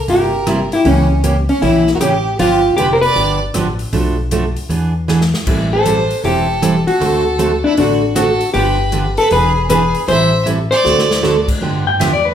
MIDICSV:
0, 0, Header, 1, 7, 480
1, 0, Start_track
1, 0, Tempo, 384615
1, 1063, Time_signature, 4, 2, 24, 8
1, 15400, End_track
2, 0, Start_track
2, 0, Title_t, "Electric slide guitar"
2, 0, Program_c, 0, 29
2, 14816, Note_on_c, 0, 79, 85
2, 14973, Note_off_c, 0, 79, 0
2, 14978, Note_on_c, 0, 76, 78
2, 15134, Note_off_c, 0, 76, 0
2, 15142, Note_on_c, 0, 74, 80
2, 15291, Note_on_c, 0, 71, 87
2, 15296, Note_off_c, 0, 74, 0
2, 15400, Note_off_c, 0, 71, 0
2, 15400, End_track
3, 0, Start_track
3, 0, Title_t, "Fiddle"
3, 0, Program_c, 1, 110
3, 124, Note_on_c, 1, 70, 72
3, 855, Note_off_c, 1, 70, 0
3, 921, Note_on_c, 1, 67, 67
3, 1060, Note_off_c, 1, 67, 0
3, 1068, Note_on_c, 1, 61, 75
3, 1512, Note_off_c, 1, 61, 0
3, 1865, Note_on_c, 1, 61, 89
3, 2018, Note_off_c, 1, 61, 0
3, 2023, Note_on_c, 1, 64, 70
3, 2413, Note_off_c, 1, 64, 0
3, 2426, Note_on_c, 1, 70, 60
3, 2488, Note_off_c, 1, 70, 0
3, 2496, Note_on_c, 1, 67, 81
3, 2947, Note_off_c, 1, 67, 0
3, 2979, Note_on_c, 1, 67, 87
3, 3429, Note_off_c, 1, 67, 0
3, 3461, Note_on_c, 1, 71, 95
3, 3647, Note_off_c, 1, 71, 0
3, 3666, Note_on_c, 1, 72, 58
3, 3767, Note_off_c, 1, 72, 0
3, 3775, Note_on_c, 1, 74, 108
3, 4222, Note_off_c, 1, 74, 0
3, 7141, Note_on_c, 1, 72, 69
3, 7743, Note_off_c, 1, 72, 0
3, 7781, Note_on_c, 1, 69, 79
3, 8524, Note_off_c, 1, 69, 0
3, 8564, Note_on_c, 1, 69, 82
3, 9480, Note_off_c, 1, 69, 0
3, 9549, Note_on_c, 1, 64, 82
3, 9700, Note_off_c, 1, 64, 0
3, 9721, Note_on_c, 1, 66, 64
3, 10159, Note_off_c, 1, 66, 0
3, 10191, Note_on_c, 1, 69, 80
3, 10634, Note_off_c, 1, 69, 0
3, 10652, Note_on_c, 1, 71, 78
3, 11398, Note_off_c, 1, 71, 0
3, 11458, Note_on_c, 1, 71, 98
3, 11614, Note_off_c, 1, 71, 0
3, 11623, Note_on_c, 1, 68, 86
3, 12069, Note_off_c, 1, 68, 0
3, 12109, Note_on_c, 1, 68, 91
3, 12552, Note_off_c, 1, 68, 0
3, 12584, Note_on_c, 1, 76, 100
3, 13029, Note_off_c, 1, 76, 0
3, 13376, Note_on_c, 1, 74, 113
3, 14283, Note_off_c, 1, 74, 0
3, 15400, End_track
4, 0, Start_track
4, 0, Title_t, "Hollow-body jazz guitar"
4, 0, Program_c, 2, 26
4, 120, Note_on_c, 2, 67, 87
4, 908, Note_off_c, 2, 67, 0
4, 913, Note_on_c, 2, 64, 81
4, 1078, Note_off_c, 2, 64, 0
4, 1081, Note_on_c, 2, 61, 81
4, 1519, Note_off_c, 2, 61, 0
4, 1863, Note_on_c, 2, 61, 84
4, 2023, Note_on_c, 2, 64, 90
4, 2033, Note_off_c, 2, 61, 0
4, 2432, Note_off_c, 2, 64, 0
4, 2437, Note_on_c, 2, 66, 68
4, 2501, Note_off_c, 2, 66, 0
4, 2506, Note_on_c, 2, 67, 90
4, 2984, Note_off_c, 2, 67, 0
4, 2989, Note_on_c, 2, 65, 106
4, 3447, Note_off_c, 2, 65, 0
4, 3452, Note_on_c, 2, 67, 100
4, 3653, Note_on_c, 2, 70, 78
4, 3663, Note_off_c, 2, 67, 0
4, 3757, Note_off_c, 2, 70, 0
4, 3762, Note_on_c, 2, 71, 112
4, 4216, Note_off_c, 2, 71, 0
4, 7152, Note_on_c, 2, 69, 82
4, 7749, Note_off_c, 2, 69, 0
4, 7800, Note_on_c, 2, 67, 99
4, 8572, Note_off_c, 2, 67, 0
4, 8577, Note_on_c, 2, 66, 78
4, 9536, Note_on_c, 2, 62, 90
4, 9565, Note_off_c, 2, 66, 0
4, 9694, Note_off_c, 2, 62, 0
4, 9709, Note_on_c, 2, 62, 89
4, 10153, Note_off_c, 2, 62, 0
4, 10184, Note_on_c, 2, 66, 88
4, 10630, Note_off_c, 2, 66, 0
4, 10653, Note_on_c, 2, 67, 107
4, 11398, Note_off_c, 2, 67, 0
4, 11456, Note_on_c, 2, 69, 101
4, 11629, Note_off_c, 2, 69, 0
4, 11637, Note_on_c, 2, 71, 103
4, 12076, Note_off_c, 2, 71, 0
4, 12105, Note_on_c, 2, 71, 102
4, 12550, Note_off_c, 2, 71, 0
4, 12586, Note_on_c, 2, 72, 109
4, 13030, Note_off_c, 2, 72, 0
4, 13364, Note_on_c, 2, 72, 95
4, 14277, Note_off_c, 2, 72, 0
4, 15400, End_track
5, 0, Start_track
5, 0, Title_t, "Steel-string acoustic guitar"
5, 0, Program_c, 3, 25
5, 99, Note_on_c, 3, 48, 48
5, 99, Note_on_c, 3, 58, 57
5, 101, Note_on_c, 3, 55, 51
5, 106, Note_on_c, 3, 64, 59
5, 109, Note_on_c, 3, 67, 54
5, 375, Note_off_c, 3, 48, 0
5, 375, Note_off_c, 3, 58, 0
5, 376, Note_off_c, 3, 55, 0
5, 379, Note_off_c, 3, 64, 0
5, 381, Note_off_c, 3, 67, 0
5, 582, Note_on_c, 3, 48, 79
5, 582, Note_on_c, 3, 55, 79
5, 588, Note_on_c, 3, 58, 77
5, 591, Note_on_c, 3, 64, 86
5, 593, Note_on_c, 3, 67, 87
5, 728, Note_off_c, 3, 48, 0
5, 728, Note_off_c, 3, 55, 0
5, 731, Note_off_c, 3, 58, 0
5, 732, Note_off_c, 3, 64, 0
5, 733, Note_off_c, 3, 67, 0
5, 1055, Note_on_c, 3, 49, 65
5, 1058, Note_on_c, 3, 52, 56
5, 1062, Note_on_c, 3, 61, 62
5, 1063, Note_on_c, 3, 58, 66
5, 1066, Note_on_c, 3, 67, 69
5, 1334, Note_off_c, 3, 49, 0
5, 1335, Note_off_c, 3, 52, 0
5, 1337, Note_off_c, 3, 61, 0
5, 1338, Note_off_c, 3, 58, 0
5, 1339, Note_off_c, 3, 67, 0
5, 1538, Note_on_c, 3, 49, 55
5, 1541, Note_on_c, 3, 52, 69
5, 1543, Note_on_c, 3, 58, 74
5, 1544, Note_on_c, 3, 61, 72
5, 1546, Note_on_c, 3, 67, 89
5, 1686, Note_off_c, 3, 49, 0
5, 1688, Note_off_c, 3, 52, 0
5, 1689, Note_off_c, 3, 58, 0
5, 1689, Note_off_c, 3, 61, 0
5, 1690, Note_off_c, 3, 67, 0
5, 2017, Note_on_c, 3, 49, 48
5, 2018, Note_on_c, 3, 52, 54
5, 2020, Note_on_c, 3, 58, 55
5, 2023, Note_on_c, 3, 61, 66
5, 2028, Note_on_c, 3, 67, 63
5, 2296, Note_off_c, 3, 49, 0
5, 2296, Note_off_c, 3, 52, 0
5, 2297, Note_off_c, 3, 58, 0
5, 2298, Note_off_c, 3, 61, 0
5, 2301, Note_off_c, 3, 67, 0
5, 2497, Note_on_c, 3, 49, 69
5, 2500, Note_on_c, 3, 52, 70
5, 2504, Note_on_c, 3, 58, 73
5, 2504, Note_on_c, 3, 61, 76
5, 2506, Note_on_c, 3, 67, 74
5, 2647, Note_off_c, 3, 49, 0
5, 2648, Note_off_c, 3, 52, 0
5, 2650, Note_off_c, 3, 58, 0
5, 2650, Note_off_c, 3, 61, 0
5, 2651, Note_off_c, 3, 67, 0
5, 2983, Note_on_c, 3, 50, 59
5, 2983, Note_on_c, 3, 53, 73
5, 2985, Note_on_c, 3, 59, 67
5, 2988, Note_on_c, 3, 62, 63
5, 2993, Note_on_c, 3, 67, 62
5, 3259, Note_off_c, 3, 50, 0
5, 3259, Note_off_c, 3, 53, 0
5, 3260, Note_off_c, 3, 59, 0
5, 3262, Note_off_c, 3, 62, 0
5, 3264, Note_off_c, 3, 67, 0
5, 3462, Note_on_c, 3, 50, 77
5, 3462, Note_on_c, 3, 53, 68
5, 3468, Note_on_c, 3, 59, 72
5, 3468, Note_on_c, 3, 62, 72
5, 3472, Note_on_c, 3, 67, 78
5, 3609, Note_off_c, 3, 50, 0
5, 3609, Note_off_c, 3, 53, 0
5, 3612, Note_off_c, 3, 59, 0
5, 3612, Note_off_c, 3, 62, 0
5, 3614, Note_off_c, 3, 67, 0
5, 3935, Note_on_c, 3, 50, 53
5, 3935, Note_on_c, 3, 53, 60
5, 3942, Note_on_c, 3, 59, 53
5, 3942, Note_on_c, 3, 67, 64
5, 3946, Note_on_c, 3, 62, 56
5, 4216, Note_off_c, 3, 50, 0
5, 4216, Note_off_c, 3, 53, 0
5, 4219, Note_off_c, 3, 59, 0
5, 4219, Note_off_c, 3, 67, 0
5, 4221, Note_off_c, 3, 62, 0
5, 4417, Note_on_c, 3, 50, 74
5, 4425, Note_on_c, 3, 53, 78
5, 4429, Note_on_c, 3, 59, 79
5, 4431, Note_on_c, 3, 62, 78
5, 4431, Note_on_c, 3, 67, 82
5, 4568, Note_off_c, 3, 50, 0
5, 4571, Note_off_c, 3, 53, 0
5, 4573, Note_off_c, 3, 59, 0
5, 4574, Note_off_c, 3, 62, 0
5, 4574, Note_off_c, 3, 67, 0
5, 4900, Note_on_c, 3, 47, 55
5, 4900, Note_on_c, 3, 53, 62
5, 4903, Note_on_c, 3, 57, 56
5, 4904, Note_on_c, 3, 62, 70
5, 4909, Note_on_c, 3, 69, 71
5, 5178, Note_off_c, 3, 47, 0
5, 5178, Note_off_c, 3, 53, 0
5, 5180, Note_off_c, 3, 57, 0
5, 5180, Note_off_c, 3, 62, 0
5, 5183, Note_off_c, 3, 69, 0
5, 5381, Note_on_c, 3, 47, 71
5, 5388, Note_on_c, 3, 53, 67
5, 5389, Note_on_c, 3, 62, 77
5, 5391, Note_on_c, 3, 57, 62
5, 5392, Note_on_c, 3, 69, 75
5, 5529, Note_off_c, 3, 47, 0
5, 5533, Note_off_c, 3, 53, 0
5, 5534, Note_off_c, 3, 62, 0
5, 5535, Note_off_c, 3, 57, 0
5, 5535, Note_off_c, 3, 69, 0
5, 5854, Note_on_c, 3, 52, 52
5, 5865, Note_on_c, 3, 59, 54
5, 5865, Note_on_c, 3, 68, 57
5, 5868, Note_on_c, 3, 62, 54
5, 6135, Note_off_c, 3, 52, 0
5, 6141, Note_off_c, 3, 59, 0
5, 6141, Note_off_c, 3, 68, 0
5, 6142, Note_off_c, 3, 62, 0
5, 6341, Note_on_c, 3, 52, 73
5, 6341, Note_on_c, 3, 62, 75
5, 6342, Note_on_c, 3, 59, 75
5, 6348, Note_on_c, 3, 68, 73
5, 6490, Note_off_c, 3, 52, 0
5, 6490, Note_off_c, 3, 59, 0
5, 6490, Note_off_c, 3, 62, 0
5, 6493, Note_off_c, 3, 68, 0
5, 6826, Note_on_c, 3, 55, 62
5, 6829, Note_on_c, 3, 52, 57
5, 6829, Note_on_c, 3, 64, 66
5, 6833, Note_on_c, 3, 60, 65
5, 6836, Note_on_c, 3, 69, 69
5, 7101, Note_off_c, 3, 55, 0
5, 7103, Note_off_c, 3, 52, 0
5, 7103, Note_off_c, 3, 64, 0
5, 7105, Note_off_c, 3, 60, 0
5, 7107, Note_off_c, 3, 69, 0
5, 7299, Note_on_c, 3, 52, 61
5, 7307, Note_on_c, 3, 55, 76
5, 7309, Note_on_c, 3, 60, 71
5, 7313, Note_on_c, 3, 69, 80
5, 7314, Note_on_c, 3, 64, 67
5, 7448, Note_off_c, 3, 52, 0
5, 7453, Note_off_c, 3, 55, 0
5, 7454, Note_off_c, 3, 60, 0
5, 7456, Note_off_c, 3, 64, 0
5, 7456, Note_off_c, 3, 69, 0
5, 7784, Note_on_c, 3, 52, 60
5, 7789, Note_on_c, 3, 55, 53
5, 7791, Note_on_c, 3, 60, 63
5, 7791, Note_on_c, 3, 64, 55
5, 7793, Note_on_c, 3, 69, 64
5, 8060, Note_off_c, 3, 52, 0
5, 8063, Note_off_c, 3, 55, 0
5, 8063, Note_off_c, 3, 60, 0
5, 8064, Note_off_c, 3, 64, 0
5, 8065, Note_off_c, 3, 69, 0
5, 8263, Note_on_c, 3, 52, 65
5, 8263, Note_on_c, 3, 55, 81
5, 8267, Note_on_c, 3, 60, 77
5, 8267, Note_on_c, 3, 64, 78
5, 8272, Note_on_c, 3, 69, 82
5, 8410, Note_off_c, 3, 52, 0
5, 8410, Note_off_c, 3, 55, 0
5, 8412, Note_off_c, 3, 60, 0
5, 8412, Note_off_c, 3, 64, 0
5, 8415, Note_off_c, 3, 69, 0
5, 8737, Note_on_c, 3, 50, 56
5, 8739, Note_on_c, 3, 57, 57
5, 8743, Note_on_c, 3, 66, 73
5, 8744, Note_on_c, 3, 60, 72
5, 8750, Note_on_c, 3, 69, 73
5, 9016, Note_off_c, 3, 50, 0
5, 9017, Note_off_c, 3, 57, 0
5, 9019, Note_off_c, 3, 66, 0
5, 9020, Note_off_c, 3, 60, 0
5, 9023, Note_off_c, 3, 69, 0
5, 9213, Note_on_c, 3, 50, 68
5, 9219, Note_on_c, 3, 57, 67
5, 9219, Note_on_c, 3, 60, 67
5, 9224, Note_on_c, 3, 66, 71
5, 9225, Note_on_c, 3, 69, 76
5, 9365, Note_off_c, 3, 50, 0
5, 9368, Note_off_c, 3, 57, 0
5, 9368, Note_off_c, 3, 60, 0
5, 9370, Note_off_c, 3, 66, 0
5, 9371, Note_off_c, 3, 69, 0
5, 9703, Note_on_c, 3, 50, 55
5, 9710, Note_on_c, 3, 57, 52
5, 9714, Note_on_c, 3, 60, 51
5, 9717, Note_on_c, 3, 69, 63
5, 9719, Note_on_c, 3, 66, 59
5, 9979, Note_off_c, 3, 50, 0
5, 9982, Note_off_c, 3, 57, 0
5, 9984, Note_off_c, 3, 60, 0
5, 9985, Note_off_c, 3, 69, 0
5, 9986, Note_off_c, 3, 66, 0
5, 10172, Note_on_c, 3, 50, 72
5, 10176, Note_on_c, 3, 57, 75
5, 10177, Note_on_c, 3, 60, 77
5, 10181, Note_on_c, 3, 66, 78
5, 10187, Note_on_c, 3, 69, 87
5, 10324, Note_off_c, 3, 50, 0
5, 10326, Note_off_c, 3, 57, 0
5, 10326, Note_off_c, 3, 60, 0
5, 10328, Note_off_c, 3, 66, 0
5, 10331, Note_off_c, 3, 69, 0
5, 10652, Note_on_c, 3, 50, 62
5, 10660, Note_on_c, 3, 53, 55
5, 10661, Note_on_c, 3, 59, 64
5, 10665, Note_on_c, 3, 62, 71
5, 10666, Note_on_c, 3, 67, 71
5, 10932, Note_off_c, 3, 50, 0
5, 10936, Note_off_c, 3, 53, 0
5, 10937, Note_off_c, 3, 59, 0
5, 10939, Note_off_c, 3, 62, 0
5, 10939, Note_off_c, 3, 67, 0
5, 11133, Note_on_c, 3, 53, 70
5, 11134, Note_on_c, 3, 50, 76
5, 11139, Note_on_c, 3, 59, 69
5, 11141, Note_on_c, 3, 62, 75
5, 11142, Note_on_c, 3, 67, 71
5, 11284, Note_off_c, 3, 50, 0
5, 11284, Note_off_c, 3, 53, 0
5, 11287, Note_off_c, 3, 59, 0
5, 11287, Note_off_c, 3, 62, 0
5, 11288, Note_off_c, 3, 67, 0
5, 11617, Note_on_c, 3, 52, 57
5, 11621, Note_on_c, 3, 59, 57
5, 11623, Note_on_c, 3, 62, 57
5, 11626, Note_on_c, 3, 68, 60
5, 11894, Note_off_c, 3, 52, 0
5, 11896, Note_off_c, 3, 59, 0
5, 11897, Note_off_c, 3, 62, 0
5, 11899, Note_off_c, 3, 68, 0
5, 12095, Note_on_c, 3, 52, 83
5, 12104, Note_on_c, 3, 59, 74
5, 12106, Note_on_c, 3, 62, 85
5, 12110, Note_on_c, 3, 68, 83
5, 12244, Note_off_c, 3, 52, 0
5, 12249, Note_off_c, 3, 59, 0
5, 12249, Note_off_c, 3, 62, 0
5, 12251, Note_off_c, 3, 68, 0
5, 12579, Note_on_c, 3, 52, 64
5, 12584, Note_on_c, 3, 55, 64
5, 12585, Note_on_c, 3, 60, 60
5, 12585, Note_on_c, 3, 64, 61
5, 12587, Note_on_c, 3, 69, 74
5, 12855, Note_off_c, 3, 52, 0
5, 12857, Note_off_c, 3, 55, 0
5, 12858, Note_off_c, 3, 60, 0
5, 12858, Note_off_c, 3, 64, 0
5, 12859, Note_off_c, 3, 69, 0
5, 13047, Note_on_c, 3, 52, 65
5, 13053, Note_on_c, 3, 55, 60
5, 13053, Note_on_c, 3, 60, 76
5, 13053, Note_on_c, 3, 64, 75
5, 13057, Note_on_c, 3, 69, 75
5, 13199, Note_off_c, 3, 52, 0
5, 13202, Note_off_c, 3, 55, 0
5, 13202, Note_off_c, 3, 60, 0
5, 13202, Note_off_c, 3, 64, 0
5, 13204, Note_off_c, 3, 69, 0
5, 13523, Note_on_c, 3, 50, 57
5, 13529, Note_on_c, 3, 57, 55
5, 13529, Note_on_c, 3, 60, 55
5, 13533, Note_on_c, 3, 66, 59
5, 13537, Note_on_c, 3, 69, 62
5, 13806, Note_off_c, 3, 50, 0
5, 13809, Note_off_c, 3, 57, 0
5, 13809, Note_off_c, 3, 60, 0
5, 13811, Note_off_c, 3, 66, 0
5, 13813, Note_off_c, 3, 69, 0
5, 14007, Note_on_c, 3, 57, 70
5, 14009, Note_on_c, 3, 50, 73
5, 14013, Note_on_c, 3, 66, 73
5, 14015, Note_on_c, 3, 60, 76
5, 14018, Note_on_c, 3, 69, 75
5, 14159, Note_off_c, 3, 57, 0
5, 14160, Note_off_c, 3, 50, 0
5, 14162, Note_off_c, 3, 66, 0
5, 14163, Note_off_c, 3, 60, 0
5, 14164, Note_off_c, 3, 69, 0
5, 14493, Note_on_c, 3, 50, 55
5, 14499, Note_on_c, 3, 53, 59
5, 14500, Note_on_c, 3, 59, 59
5, 14502, Note_on_c, 3, 62, 62
5, 14507, Note_on_c, 3, 67, 65
5, 14771, Note_off_c, 3, 50, 0
5, 14774, Note_off_c, 3, 53, 0
5, 14774, Note_off_c, 3, 59, 0
5, 14775, Note_off_c, 3, 62, 0
5, 14778, Note_off_c, 3, 67, 0
5, 14969, Note_on_c, 3, 50, 71
5, 14974, Note_on_c, 3, 53, 68
5, 14980, Note_on_c, 3, 59, 72
5, 14982, Note_on_c, 3, 62, 68
5, 14984, Note_on_c, 3, 67, 73
5, 15120, Note_off_c, 3, 50, 0
5, 15122, Note_off_c, 3, 53, 0
5, 15125, Note_off_c, 3, 59, 0
5, 15126, Note_off_c, 3, 62, 0
5, 15127, Note_off_c, 3, 67, 0
5, 15400, End_track
6, 0, Start_track
6, 0, Title_t, "Upright bass"
6, 0, Program_c, 4, 32
6, 101, Note_on_c, 4, 31, 73
6, 870, Note_off_c, 4, 31, 0
6, 1057, Note_on_c, 4, 37, 92
6, 1828, Note_off_c, 4, 37, 0
6, 2025, Note_on_c, 4, 34, 86
6, 2433, Note_off_c, 4, 34, 0
6, 2500, Note_on_c, 4, 33, 81
6, 2911, Note_off_c, 4, 33, 0
6, 2987, Note_on_c, 4, 31, 84
6, 3371, Note_off_c, 4, 31, 0
6, 3461, Note_on_c, 4, 29, 78
6, 3871, Note_off_c, 4, 29, 0
6, 3939, Note_on_c, 4, 31, 77
6, 4350, Note_off_c, 4, 31, 0
6, 4431, Note_on_c, 4, 33, 83
6, 4837, Note_off_c, 4, 33, 0
6, 4901, Note_on_c, 4, 35, 87
6, 5672, Note_off_c, 4, 35, 0
6, 5858, Note_on_c, 4, 40, 90
6, 6630, Note_off_c, 4, 40, 0
6, 6823, Note_on_c, 4, 33, 82
6, 7593, Note_off_c, 4, 33, 0
6, 7783, Note_on_c, 4, 28, 84
6, 8552, Note_off_c, 4, 28, 0
6, 8742, Note_on_c, 4, 38, 95
6, 9511, Note_off_c, 4, 38, 0
6, 9701, Note_on_c, 4, 33, 76
6, 10470, Note_off_c, 4, 33, 0
6, 10667, Note_on_c, 4, 31, 82
6, 11433, Note_off_c, 4, 31, 0
6, 11621, Note_on_c, 4, 28, 87
6, 12389, Note_off_c, 4, 28, 0
6, 12578, Note_on_c, 4, 33, 94
6, 13347, Note_off_c, 4, 33, 0
6, 13543, Note_on_c, 4, 38, 93
6, 14309, Note_off_c, 4, 38, 0
6, 14495, Note_on_c, 4, 43, 83
6, 14963, Note_off_c, 4, 43, 0
6, 14980, Note_on_c, 4, 40, 87
6, 15400, Note_off_c, 4, 40, 0
6, 15400, End_track
7, 0, Start_track
7, 0, Title_t, "Drums"
7, 102, Note_on_c, 9, 46, 48
7, 226, Note_off_c, 9, 46, 0
7, 583, Note_on_c, 9, 37, 74
7, 583, Note_on_c, 9, 42, 61
7, 708, Note_off_c, 9, 37, 0
7, 708, Note_off_c, 9, 42, 0
7, 898, Note_on_c, 9, 46, 39
7, 1023, Note_off_c, 9, 46, 0
7, 1060, Note_on_c, 9, 46, 51
7, 1185, Note_off_c, 9, 46, 0
7, 1544, Note_on_c, 9, 42, 48
7, 1668, Note_off_c, 9, 42, 0
7, 1858, Note_on_c, 9, 46, 38
7, 1983, Note_off_c, 9, 46, 0
7, 2026, Note_on_c, 9, 46, 46
7, 2151, Note_off_c, 9, 46, 0
7, 2336, Note_on_c, 9, 38, 36
7, 2461, Note_off_c, 9, 38, 0
7, 2505, Note_on_c, 9, 37, 68
7, 2505, Note_on_c, 9, 42, 59
7, 2630, Note_off_c, 9, 37, 0
7, 2630, Note_off_c, 9, 42, 0
7, 2986, Note_on_c, 9, 46, 54
7, 3110, Note_off_c, 9, 46, 0
7, 3466, Note_on_c, 9, 42, 46
7, 3590, Note_off_c, 9, 42, 0
7, 3774, Note_on_c, 9, 46, 37
7, 3899, Note_off_c, 9, 46, 0
7, 3943, Note_on_c, 9, 46, 46
7, 4068, Note_off_c, 9, 46, 0
7, 4420, Note_on_c, 9, 37, 69
7, 4420, Note_on_c, 9, 42, 59
7, 4545, Note_off_c, 9, 37, 0
7, 4545, Note_off_c, 9, 42, 0
7, 4729, Note_on_c, 9, 46, 39
7, 4854, Note_off_c, 9, 46, 0
7, 4901, Note_on_c, 9, 46, 52
7, 5026, Note_off_c, 9, 46, 0
7, 5383, Note_on_c, 9, 42, 52
7, 5507, Note_off_c, 9, 42, 0
7, 5695, Note_on_c, 9, 46, 40
7, 5820, Note_off_c, 9, 46, 0
7, 5869, Note_on_c, 9, 46, 46
7, 5994, Note_off_c, 9, 46, 0
7, 6346, Note_on_c, 9, 38, 57
7, 6470, Note_off_c, 9, 38, 0
7, 6505, Note_on_c, 9, 38, 57
7, 6630, Note_off_c, 9, 38, 0
7, 6663, Note_on_c, 9, 38, 70
7, 6788, Note_off_c, 9, 38, 0
7, 6823, Note_on_c, 9, 49, 74
7, 6824, Note_on_c, 9, 36, 75
7, 6948, Note_off_c, 9, 36, 0
7, 6948, Note_off_c, 9, 49, 0
7, 7307, Note_on_c, 9, 42, 51
7, 7432, Note_off_c, 9, 42, 0
7, 7618, Note_on_c, 9, 46, 39
7, 7743, Note_off_c, 9, 46, 0
7, 7792, Note_on_c, 9, 46, 47
7, 7916, Note_off_c, 9, 46, 0
7, 8269, Note_on_c, 9, 37, 68
7, 8269, Note_on_c, 9, 42, 64
7, 8394, Note_off_c, 9, 37, 0
7, 8394, Note_off_c, 9, 42, 0
7, 8580, Note_on_c, 9, 46, 37
7, 8705, Note_off_c, 9, 46, 0
7, 8753, Note_on_c, 9, 46, 49
7, 8878, Note_off_c, 9, 46, 0
7, 9224, Note_on_c, 9, 42, 47
7, 9349, Note_off_c, 9, 42, 0
7, 9700, Note_on_c, 9, 46, 45
7, 9825, Note_off_c, 9, 46, 0
7, 10181, Note_on_c, 9, 37, 68
7, 10181, Note_on_c, 9, 42, 68
7, 10306, Note_off_c, 9, 37, 0
7, 10306, Note_off_c, 9, 42, 0
7, 10490, Note_on_c, 9, 46, 38
7, 10615, Note_off_c, 9, 46, 0
7, 10657, Note_on_c, 9, 46, 46
7, 10782, Note_off_c, 9, 46, 0
7, 11133, Note_on_c, 9, 42, 46
7, 11258, Note_off_c, 9, 42, 0
7, 11447, Note_on_c, 9, 46, 41
7, 11572, Note_off_c, 9, 46, 0
7, 11613, Note_on_c, 9, 46, 45
7, 11738, Note_off_c, 9, 46, 0
7, 12101, Note_on_c, 9, 37, 74
7, 12101, Note_on_c, 9, 42, 65
7, 12226, Note_off_c, 9, 37, 0
7, 12226, Note_off_c, 9, 42, 0
7, 12411, Note_on_c, 9, 46, 42
7, 12536, Note_off_c, 9, 46, 0
7, 12583, Note_on_c, 9, 46, 49
7, 12708, Note_off_c, 9, 46, 0
7, 13061, Note_on_c, 9, 42, 45
7, 13186, Note_off_c, 9, 42, 0
7, 13378, Note_on_c, 9, 46, 41
7, 13503, Note_off_c, 9, 46, 0
7, 13546, Note_on_c, 9, 38, 50
7, 13670, Note_off_c, 9, 38, 0
7, 13711, Note_on_c, 9, 38, 64
7, 13836, Note_off_c, 9, 38, 0
7, 13866, Note_on_c, 9, 38, 91
7, 13991, Note_off_c, 9, 38, 0
7, 14023, Note_on_c, 9, 38, 61
7, 14147, Note_off_c, 9, 38, 0
7, 14329, Note_on_c, 9, 36, 76
7, 14332, Note_on_c, 9, 49, 68
7, 14453, Note_off_c, 9, 36, 0
7, 14457, Note_off_c, 9, 49, 0
7, 14986, Note_on_c, 9, 38, 57
7, 14986, Note_on_c, 9, 44, 48
7, 14986, Note_on_c, 9, 51, 69
7, 15111, Note_off_c, 9, 38, 0
7, 15111, Note_off_c, 9, 44, 0
7, 15111, Note_off_c, 9, 51, 0
7, 15400, End_track
0, 0, End_of_file